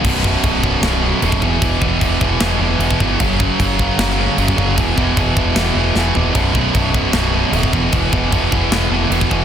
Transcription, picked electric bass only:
\new Staff \with { instrumentName = "Picked electric bass" } { \clef bass \time 4/4 \key e \dorian \tempo 4 = 152 b,,,4 b,,,4 b,,,4 dis,,8 e,,8 | e,,8 e,,8 e,,8 e,,8 e,,8 e,,8 e,,8 g,,8 | fis,,4 fis,,4 fis,,4 fis,,8 fis,,8 | e,,8 e,,8 e,,8 e,,8 e,,8 e,,8 e,,8 e,,8 |
b,,,4 b,,,4 b,,,4 d,,8 e,,8 | e,,8 e,,8 e,,8 e,,8 e,,8 e,,8 e,,8 e,,8 | }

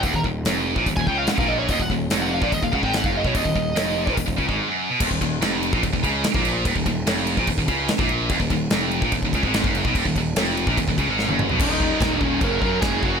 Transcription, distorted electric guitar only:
\new Staff \with { instrumentName = "Distorted electric guitar" } { \clef bass \time 4/4 \key ees \minor \tempo 4 = 146 ees,16 ees,16 ees,8 f,8. bes,16 ees,16 ees,16 des8 r16 bes,8. | ees,16 ees,16 ees,8 f,8. bes,16 ees,16 ees,16 des16 aes,8 ges,8 ces16 | ees,16 ees,16 ees,8 f,8. bes,16 ees,16 ees,16 des16 aes,8 ges,8 ces16 | ees,16 ees,16 ees,8 f,8. bes,16 ees,16 ees,16 des8 r16 bes,8. |
ees,16 ees,16 ees,8 f,8. bes,16 ees,16 ees,16 des8 r16 bes,8. | ees,16 ees,16 ees,8 f,8. bes,16 ees,16 ees,16 des16 aes,8 ges,8 ces16 | ees,16 ees,16 ees,8 f,8. bes,16 ees,16 ees,16 des16 aes,8 ges,8 ces16 | <ees, bes, ees>8 <ees, bes, ees>8 <ees, bes, ees>8 <ees, bes, ees>8 <ges, des ges>8 <ges, des ges>8 <ges, des ges>8 <ges, des ges>8 | }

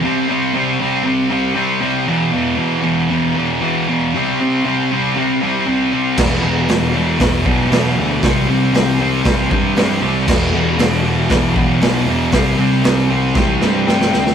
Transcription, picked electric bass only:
\new Staff \with { instrumentName = "Picked electric bass" } { \clef bass \time 4/4 \key c \lydian \tempo 4 = 117 r1 | r1 | r1 | e,,8 e,,8 e,,4 e,,8 b,,8 b,,8 d,8 |
c,8 c,8 c,4 c,8 g,8 g,8 c,8 | e,,8 e,,8 e,,4 e,,8 b,,8 b,,8 e,,8 | c,8 c,8 c,4 c,8 g,8 g,8 d,8 | }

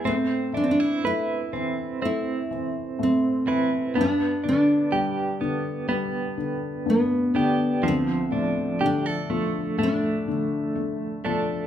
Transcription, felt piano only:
\new Staff \with { instrumentName = "Felt piano" } { \clef bass \time 4/4 \key a \minor \tempo 4 = 62 a,8 e8 a8 e8 a8 e8 a,8 e8 | g,8 d8 g8 d8 g8 d8 g,8 d8 | d,8 a,8 d8 f8 a,8 d8 a8 f8 | }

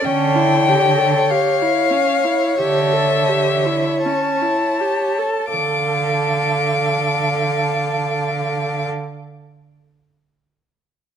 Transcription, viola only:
\new Staff \with { instrumentName = "Viola" } { \time 4/4 \key d \minor \tempo 4 = 43 cis'16 e'16 g'16 a'16 g'16 e'16 cis'16 e'16 g'16 a'16 g'16 e'16 cis'16 e'16 g'16 a'16 | a'1 | }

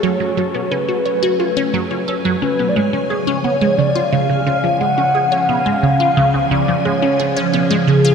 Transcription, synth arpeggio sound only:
\new Staff \with { instrumentName = "Synth arpeggio sound" } { \time 4/4 \key cis \phrygian \tempo 4 = 88 fis16 fis16 fis16 b16 cis'16 fis'16 cis''16 fis'16 eis'16 cis'16 fis16 cis'16 a'16 fis16 cis'16 b16 | gis16 cis'16 gis'16 cis'16 b16 gis16 cis16 eis'16 cis16 cis16 cis16 eis16 gis16 cis'16 gis'16 cis'16 | b16 gis16 cis16 eis'16 cis16 cis16 cis16 eis16 gis16 cis'16 gis'16 cis'16 b16 gis16 cis16 eis'16 | }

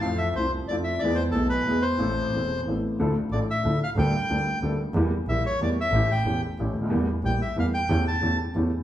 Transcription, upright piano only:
\new Staff \with { instrumentName = "Upright piano" } { \clef bass \time 3/4 \key a \minor \tempo 4 = 184 <f, f a c' e' f'>4 <c, c a c' e' f'>4 <f, f a c' e' f'>4 | <e, e gis b gis'>4 <b,, b, e gis b gis'>4 <e, e gis b gis'>4 | <a,, a, e a c' a'>4 <e,, e, e a c' a'>4 <a,, a, e b c' a'>4 | \key d \minor <d, d f d' e' a'>8 r8 <a,, a, f d' e' a'>8 r8 <d, d f d' e' a'>8 r8 |
<d, d g bes d' a'>8 r8 <d, d g bes d' a'>8 r8 <d, d g bes d' a'>8 r8 | <e, e g bes g'>8 r8 <bes,, bes, e g bes g'>8 r8 <e, e g bes g'>8 r8 | <a,, a, e a cis' g'>8 r8 <e,, e, e a cis' g'>8 r8 <a,, a, e a cis' g'>8 r32 cis,32 d,32 ees,32 | <e, e g bes g'>8 r8 <bes,, bes, e g bes g'>8 r8 <e, e g bes g'>8 r8 |
<e, e a cis' g'>8 r8 <e, e a cis' g'>8 r8 <e, e a cis' g'>8 r8 | }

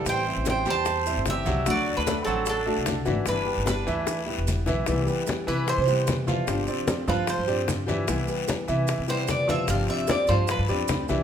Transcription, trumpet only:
\new Staff \with { instrumentName = "Trumpet" } { \time 4/4 \key c \major \tempo 4 = 150 c''4 c''8 c''4. g'4 | \tuplet 3/2 { fis'4 d'8~ d'8 c'4 } d'4. r8 | d'4 d'4. r4. | r1 |
r1 | r1 | r1 | }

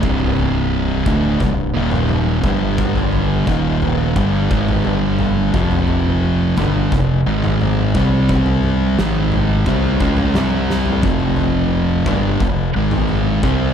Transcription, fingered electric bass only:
\new Staff \with { instrumentName = "Fingered electric bass" } { \clef bass \time 4/4 \key c \minor \tempo 4 = 87 c,,4. d,,8 c,,8 ees,,4 g,,8~ | g,,4 ees,,4 g,,8 aes,,8 g,,4 | f,,4. g,,8 f,,8 aes,,4 c,8~ | c,4 aes,,4 c,8 des,8 c,4 |
f,,4. g,,8 f,,8 aes,,4 c,8 | }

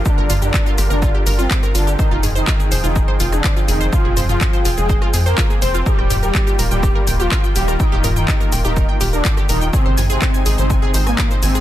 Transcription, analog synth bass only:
\new Staff \with { instrumentName = "Analog synth bass" } { \clef bass \time 4/4 \key f \dorian \tempo 4 = 124 r16 g,,16 g,,8 r8 g,,16 g,,8 r16 g,,8 r8 g,,8 | r16 f,,16 f,,8 r8 f,,16 f,,8 r16 f,,8 r8 f,,8 | r16 f,,16 f,,8 r8 f,,16 f,,8 r16 f,8 r8 f,,8 | r16 ees,,16 ees,,8 r8 ees,,16 ees,,8 r16 ees,,8 r8 ees,,8 |
r16 ees,,16 ees,,8 r8 ees,,16 ees,,8 r16 ees,,8 r8 ees,,8 | r16 aes,,16 aes,,8 r8 aes,,16 aes,,8 r16 aes,,8 r8 aes,,8 | }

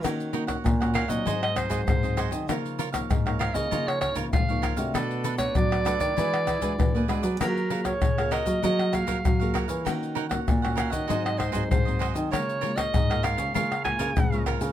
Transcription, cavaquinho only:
\new Staff \with { instrumentName = "Cavaquinho" } { \time 4/4 \key des \major \tempo 4 = 98 <ees' bes' des'' ges''>8 <ees' bes' des'' ges''>16 <bes' des'' ges''>8 <bes' des'' ges''>16 <ees' bes' des'' ges''>16 <bes' des'' ges''>16 <ges' aes' c'' ees''>8 <ges' aes' c'' ees''>16 <ges' aes' c'' ees''>16 r16 <aes' c'' ees''>16 <ges' aes' c'' ees''>16 <aes' c'' ees''>16 | <f' bes' des'' f''>8 <f' bes' des'' f''>16 <bes' des'' f''>8 <bes' des'' f''>16 <f' bes' des'' f''>16 <bes' des'' f''>16 <f' bes' des'' f''>8 <f' bes' des'' f''>16 <f' bes' des'' f''>16 r16 <bes' des'' f''>16 <f' bes' des'' f''>16 <bes' des'' f''>16 | <d' a' b' d''>8 <d' a' b' d''>16 <a' b' d''>8 <a' b' d''>16 <d' a' b' d''>16 <a' b' d''>16 <e' gis' b' d''>8 <e' gis' b' d''>16 <e' gis' b' d''>16 r16 <gis' b' d''>16 <e' gis' b' d''>16 <gis' b' d''>16 | <ges' bes' des'' f''>8 <ges' bes' des'' f''>16 <bes' des'' f''>8 <bes' des'' f''>16 <ges' bes' des'' f''>16 <bes' des'' f''>16 <ges' bes' des'' f''>8 <ges' bes' des'' f''>16 <ges' bes' des'' f''>16 r16 <bes' des'' f''>16 <ges' bes' des'' f''>16 <bes' des'' f''>16 |
<ees' bes' des'' ges''>8 <ees' bes' des'' ges''>16 <bes' des'' ges''>8 <bes' des'' ges''>16 <ees' bes' des'' ges''>16 <bes' des'' ges''>16 <ges' aes' c'' ees''>8 <ges' aes' c'' ees''>16 <ges' aes' c'' ees''>16 r16 <aes' c'' ees''>16 <ges' aes' c'' ees''>16 <aes' c'' ees''>16 | <f' bes' des'' f''>8 <f' bes' des'' f''>16 <bes' des'' f''>8 <bes' des'' f''>16 <f' bes' des'' f''>16 <bes' des'' f''>16 <f' bes' des'' f''>8 <f' bes' des'' f''>16 <f' bes' des'' f''>16 r16 <bes' des'' f''>16 <f' bes' des'' f''>16 <bes' des'' f''>16 | }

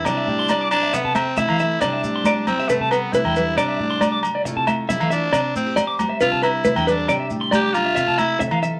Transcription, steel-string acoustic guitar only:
\new Staff \with { instrumentName = "Steel-string acoustic guitar" } { \time 4/4 \key c \major \tempo 4 = 137 << { <g e' g' d''>8 g'8 d''8 e'16 g'16 a'8 a'4. | <g e' g' c''>8 g'8 c''8 e'16 g'16 b'8 a'8 d'8 d'8 | d''8 g'8 d''8 g'8 <a e' f' a'>8 f'8 g16 a16 f'8 | c''8 e'16 g'16 c''8 g'8 d'8 d'8 c'16 d'16 a'8 |
<g d' g' d''>8 g'8 d'8 d'8 <a c'>8 c'8 a'8 f'8 | } \\ { c4. g8 c4. a8 | c4. g8 c4. g8 | c4. g8 c4. a8 | c4. g8 c4. g8 |
c4. g8 c2 | } >> }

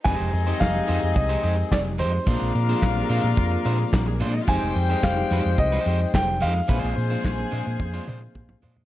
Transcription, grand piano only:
\new Staff \with { instrumentName = "Grand piano" } { \time 4/4 \key f \dorian \tempo 4 = 108 aes''4 f''4 ees''4 d''8 c''8~ | c''8 r2. r8 | aes''4 f''4 ees''4 g''8 f''8~ | f''8 r2. r8 | }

